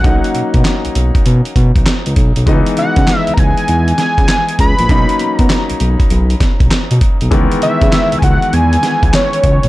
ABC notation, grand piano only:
X:1
M:4/4
L:1/8
Q:"Swing 16ths" 1/4=99
K:C#dor
V:1 name="Grand piano"
[F,A,CD]8 | [D,E,G,B,D]8 | [F,A,CD]8 | [D,E,G,B,]8 |]